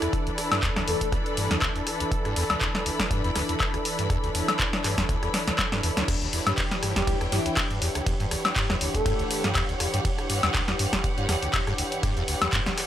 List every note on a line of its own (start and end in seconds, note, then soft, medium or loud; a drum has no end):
0.00 0.08 E2 medium
0.00 12.87 E3 medium
0.00 12.87 D4 medium
0.00 0.11 E4 loud
0.00 12.87 E4 medium
0.00 6.07 A4 medium
0.00 12.87 B4 medium
0.00 4.30 D5 medium
0.00 6.93 B5 medium
0.00 cross-stick medium
0.00 closed hi-hat medium
0.13 kick loud
0.13 closed hi-hat medium
0.27 0.31 D2 medium
0.27 closed hi-hat soft
0.38 cross-stick medium
0.38 open hi-hat loud
0.52 0.61 G2 medium
0.52 snare medium
0.52 closed hi-hat medium
0.52 high woodblock medium
0.63 0.70 E2 loud
0.63 kick loud
0.63 clap loud
0.63 closed hi-hat medium
0.76 0.83 D2 medium
0.76 cross-stick medium
0.76 snare medium
0.76 closed hi-hat soft
0.88 0.95 E2 medium
0.88 0.96 A4 medium
0.88 open hi-hat medium
1.01 1.08 A4 medium
1.01 kick medium
1.01 closed hi-hat medium
1.12 1.17 D2 medium
1.12 kick loud
1.12 cross-stick medium
1.12 closed hi-hat soft
1.26 closed hi-hat soft
1.37 1.48 G2 medium
1.37 open hi-hat loud
1.51 1.57 E2 loud
1.51 cross-stick medium
1.51 snare medium
1.51 closed hi-hat soft
1.62 1.69 D2 medium
1.62 kick loud
1.62 clap loud
1.62 closed hi-hat medium
1.62 high woodblock medium
1.76 1.82 E2 medium
1.76 closed hi-hat soft
1.87 cross-stick medium
1.87 open hi-hat medium
2.00 2.04 D2 medium
2.00 closed hi-hat medium
2.12 kick loud
2.12 closed hi-hat medium
2.25 2.34 G2 medium
2.25 cross-stick medium
2.25 closed hi-hat soft
2.36 2.44 E2 loud
2.36 open hi-hat loud
2.50 2.56 D2 medium
2.50 snare medium
2.50 closed hi-hat medium
2.50 high woodblock medium
2.61 2.69 E2 medium
2.61 kick loud
2.61 cross-stick medium
2.61 clap loud
2.61 closed hi-hat medium
2.75 snare medium
2.75 closed hi-hat soft
2.86 2.90 D2 medium
2.86 open hi-hat medium
3.00 kick medium
3.00 cross-stick medium
3.00 snare medium
3.00 closed hi-hat medium
3.11 3.22 G2 medium
3.11 kick loud
3.11 closed hi-hat medium
3.24 3.31 E2 loud
3.24 closed hi-hat soft
3.36 3.43 D2 medium
3.36 cross-stick medium
3.36 snare soft
3.36 open hi-hat loud
3.49 3.55 E2 medium
3.49 closed hi-hat medium
3.60 kick loud
3.60 clap loud
3.60 closed hi-hat medium
3.60 high woodblock medium
3.74 3.78 D2 medium
3.74 cross-stick medium
3.74 closed hi-hat soft
3.85 open hi-hat medium
3.99 4.08 G2 medium
3.99 closed hi-hat medium
4.10 4.17 E2 loud
4.10 kick loud
4.10 cross-stick medium
4.10 closed hi-hat medium
4.16 12.87 C#5 medium
4.23 4.30 D2 medium
4.23 closed hi-hat soft
4.35 4.42 E2 medium
4.35 open hi-hat loud
4.48 cross-stick medium
4.48 snare medium
4.48 closed hi-hat medium
4.48 high woodblock medium
4.59 4.64 D2 medium
4.59 kick loud
4.59 clap loud
4.59 closed hi-hat medium
4.73 snare medium
4.73 closed hi-hat soft
4.84 4.95 G2 medium
4.84 cross-stick medium
4.84 clap soft
4.84 open hi-hat medium
4.98 5.04 E2 loud
4.98 kick medium
4.98 snare medium
4.98 closed hi-hat medium
5.09 5.17 D2 medium
5.09 kick loud
5.09 closed hi-hat medium
5.23 5.29 E2 medium
5.23 cross-stick medium
5.23 closed hi-hat soft
5.34 snare medium
5.34 open hi-hat loud
5.47 5.51 D2 medium
5.47 snare medium
5.47 closed hi-hat medium
5.59 kick loud
5.59 snare medium
5.59 clap loud
5.59 closed hi-hat medium
5.59 high woodblock medium
5.72 5.81 G2 medium
5.72 snare medium
5.72 closed hi-hat soft
5.83 5.91 E2 loud
5.83 open hi-hat medium
5.97 6.03 D2 medium
5.97 snare medium
5.97 closed hi-hat medium
6.08 6.16 E2 loud
6.08 12.87 G4 medium
6.08 kick loud
6.08 cross-stick medium
6.08 closed hi-hat medium
6.08 crash medium
6.08 ride medium
6.22 6.28 D2 medium
6.22 closed hi-hat soft
6.33 6.41 E2 medium
6.33 open hi-hat loud
6.47 6.53 G2 loud
6.47 cross-stick medium
6.47 snare medium
6.47 closed hi-hat medium
6.47 high woodblock medium
6.58 6.62 D2 medium
6.58 kick loud
6.58 clap loud
6.58 closed hi-hat medium
6.58 ride medium
6.71 snare medium
6.71 closed hi-hat soft
6.83 6.94 G2 medium
6.83 cross-stick medium
6.83 open hi-hat medium
6.91 7.99 G5 medium
6.96 7.02 E2 loud
6.96 7.18 G4 medium
6.96 kick medium
6.96 snare medium
6.96 closed hi-hat medium
7.07 7.15 D2 medium
7.07 kick loud
7.07 closed hi-hat medium
7.07 ride medium
7.21 7.27 E2 medium
7.21 cross-stick medium
7.21 closed hi-hat soft
7.32 7.40 G2 loud
7.32 7.54 E4 loud
7.32 snare soft
7.32 open hi-hat loud
7.46 7.49 D2 medium
7.46 closed hi-hat medium
7.57 kick loud
7.57 cross-stick medium
7.57 clap loud
7.57 closed hi-hat medium
7.57 ride medium
7.57 high woodblock medium
7.71 7.80 G2 medium
7.71 closed hi-hat soft
7.81 7.89 E2 medium
7.81 12.87 F#5 medium
7.81 open hi-hat medium
7.95 8.02 D2 medium
7.95 cross-stick medium
7.95 closed hi-hat medium
8.07 8.14 E2 medium
8.07 kick loud
8.07 closed hi-hat medium
8.07 ride medium
8.20 8.26 G2 loud
8.20 closed hi-hat soft
8.31 8.36 D2 medium
8.31 cross-stick medium
8.31 open hi-hat loud
8.45 snare medium
8.45 closed hi-hat medium
8.45 high woodblock medium
8.56 8.67 G2 medium
8.56 kick loud
8.56 clap loud
8.56 closed hi-hat medium
8.56 ride medium
8.70 8.76 E2 loud
8.70 cross-stick medium
8.70 snare medium
8.70 closed hi-hat soft
8.81 8.88 D2 medium
8.81 open hi-hat medium
8.95 9.01 E2 medium
8.95 9.44 A4 medium
8.95 kick medium
8.95 closed hi-hat medium
9.06 9.13 G2 loud
9.06 kick loud
9.06 cross-stick medium
9.06 closed hi-hat medium
9.06 ride medium
9.19 9.23 D2 medium
9.19 closed hi-hat soft
9.31 open hi-hat loud
9.44 9.53 G2 medium
9.44 cross-stick medium
9.44 snare medium
9.44 closed hi-hat medium
9.55 9.63 E2 loud
9.55 kick loud
9.55 clap loud
9.55 closed hi-hat medium
9.55 ride medium
9.55 high woodblock medium
9.69 9.75 D2 medium
9.69 closed hi-hat soft
9.80 9.88 E2 medium
9.80 cross-stick medium
9.80 open hi-hat loud
9.94 10.00 G2 loud
9.94 closed hi-hat medium
10.05 10.09 D2 medium
10.05 kick loud
10.05 closed hi-hat soft
10.05 ride medium
10.18 cross-stick medium
10.18 closed hi-hat soft
10.30 10.41 G2 medium
10.30 open hi-hat loud
10.43 10.49 E2 loud
10.43 snare medium
10.43 closed hi-hat medium
10.43 high woodblock medium
10.54 10.62 D2 medium
10.54 kick loud
10.54 cross-stick medium
10.54 clap loud
10.54 closed hi-hat medium
10.54 ride medium
10.68 10.74 E2 medium
10.68 snare medium
10.68 closed hi-hat soft
10.79 10.87 G2 loud
10.79 open hi-hat loud
10.93 10.97 D2 medium
10.93 kick medium
10.93 cross-stick medium
10.93 snare medium
10.93 closed hi-hat medium
11.04 kick loud
11.04 closed hi-hat medium
11.04 ride medium
11.18 11.27 G2 medium
11.18 closed hi-hat soft
11.29 11.36 E2 loud
11.29 cross-stick medium
11.29 snare soft
11.29 open hi-hat loud
11.42 11.49 D2 medium
11.42 closed hi-hat medium
11.54 11.61 E2 medium
11.54 kick loud
11.54 clap loud
11.54 closed hi-hat medium
11.54 ride medium
11.54 high woodblock medium
11.67 11.73 G2 loud
11.67 cross-stick medium
11.67 closed hi-hat soft
11.78 11.83 D2 medium
11.78 open hi-hat loud
11.92 closed hi-hat medium
12.03 12.14 G2 medium
12.03 kick loud
12.03 cross-stick medium
12.03 closed hi-hat soft
12.03 ride medium
12.17 12.23 E2 loud
12.17 closed hi-hat soft
12.28 12.35 D2 medium
12.28 open hi-hat loud
12.42 12.48 E2 medium
12.42 cross-stick medium
12.42 snare medium
12.42 closed hi-hat medium
12.42 high woodblock medium
12.53 12.60 G2 loud
12.53 kick loud
12.53 clap loud
12.53 closed hi-hat medium
12.53 ride medium
12.66 12.70 D2 medium
12.66 snare medium
12.66 closed hi-hat soft
12.78 cross-stick medium
12.78 clap soft
12.78 open hi-hat loud